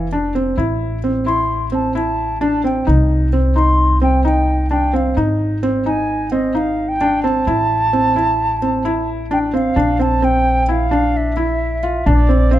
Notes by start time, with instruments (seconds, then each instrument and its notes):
Already playing: upright bass F1
0.13 felt piano D4
0.35 felt piano C4
0.58 upright bass A1, felt piano E4
1.04 felt piano C4
1.26 felt piano E4, flute C6
1.72 felt piano C4, flute A5
1.95 felt piano E4, flute A5
2.41 felt piano D4, flute A5
2.64 felt piano C4, flute G5
2.87 upright bass C2, felt piano D#4
3.33 felt piano C4
3.56 felt piano D#4, flute C6
4.02 felt piano C4, flute G5
4.25 felt piano D#4, flute G5
4.71 felt piano D4, flute G5
4.93 felt piano C4, flute F5
5.17 upright bass G#1, felt piano D#4
5.63 felt piano C4
5.86 felt piano D#4, flute G#5
6.32 felt piano C4, flute D#5
6.55 felt piano D#4, flute F5
6.88 flute G5
7.01 felt piano D4
7.23 felt piano C4, flute A5
7.47 upright bass A1, felt piano E4
7.93 felt piano C4
8.16 felt piano E4
8.62 felt piano C4
8.85 felt piano E4
9.31 felt piano D4, flute G5
9.53 felt piano C4, flute F5
9.76 upright bass A#1, felt piano D4
9.99 felt piano C4, flute A5
10.22 felt piano C4, flute G5
10.62 flute G5
10.69 felt piano E4, flute F5
10.91 felt piano D4
11.17 flute E5
11.37 felt piano E4
11.83 felt piano F4
12.06 upright bass A#1, felt piano D4, flute D5
12.29 felt piano C4
12.51 felt piano C4, flute F5